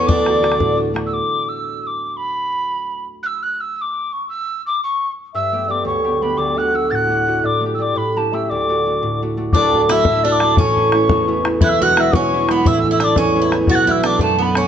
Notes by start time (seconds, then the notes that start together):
Already playing: E2 A3 B3 C#4 F#4 A4
0.06 D2 D4 D5 D6, bodhran
0.26 A3 D4 F#4, bodhran
0.41 A3 D4 F#4, bodhran
0.52 bodhran
0.59 A2, bodhran
0.76 A3 D4 F#4
0.94 A3 D4 F#4, bodhran
1.06 E6
1.13 D6
1.48 E6
1.82 E6
1.87 D6
2.16 B5
3.23 E6 F#6
3.42 F#6
3.60 E6
3.76 E6
3.81 D6
4.12 C#6
4.29 E6
4.66 D6
4.83 C#6
5.33 G2 E5 E6
5.52 A3 B3 G4
5.68 A3 B3 G4 D5 D6
5.85 D2 C#5 C#6
6.04 A3 B3 G4
6.22 A3 B3 G4 B4 B5
6.37 D2 D5 D6
6.55 A3 D4 F#5 F#6
6.59 F#4
6.74 A3 D4 F#4 E6
6.89 A2 F#5 A6
6.95 F#6
7.08 A3 D4 F#4
7.27 A3 D4 F#4
7.43 A2 D5 D6
7.61 A3 D4
7.66 G4
7.74 A3 E6
7.79 D4 G4 D5 D6
7.96 A2 B4 B5
8.16 A3 C#4 G4 A5
8.32 A3 C#4 G4 E5 E6
8.49 D2 D5 D6
8.69 A3 D4 F#4
8.86 A3 D4 F#4
9.03 A2
9.22 A3 D4 F#4
9.37 A3 D4 F#4
9.53 D1 D2 D4 D5 D6, bodhran
9.73 A3 D4 F#4, bodhran
9.83 D6
9.89 A3 D4 E4 F#4 E5 E6, bodhran
10.05 A2, bodhran
10.23 A3 D4 F#4 D5 E6
10.32 D6
10.40 A3 D4 F#4, bodhran
10.56 A1 A2 C#4 C#5 C#6, bodhran
10.76 A3 C#4 E4, bodhran
10.92 A3 C#4 E4, bodhran
11.09 E2, bodhran
11.28 A3 C#4 E4
11.44 A3 C#4 E4, bodhran
11.61 E1 E2 E4 E5 F#6, bodhran
11.69 E6
11.80 G#3 D4 E4 F#4 F#5 F#6, bodhran
11.97 G#3 D4 E4 E5 E6, bodhran
12.13 B2 C#4 C#5 C#6, bodhran
12.33 G#3 D4 E4
12.49 G#3 B3 D4 E4 B4 B5, bodhran
12.64 A1 A2 E4 E5 E6, bodhran
12.78 E6
12.83 A3 C#4 E4, bodhran
12.91 E4 E5 E6
12.99 A3 C#4 D4 E4 D5, bodhran
13.04 D6
13.16 E2 C#4 C#5 C#6, bodhran
13.35 A3 C#4 E4
13.42 E4
13.52 A3 C#4 E4, bodhran
13.67 B1 B2 F#4 F#5 A6, bodhran
13.75 F#6
13.87 A3 B3 D4 E4 E5 E6, bodhran
14.03 A3 B3 D4 D5 D6, bodhran
14.19 F#2 A3 A4 A5, bodhran
14.37 A3 B3 D4 B4
14.42 B5
14.55 A3 B3 C#4 D4 C#5 C#6, bodhran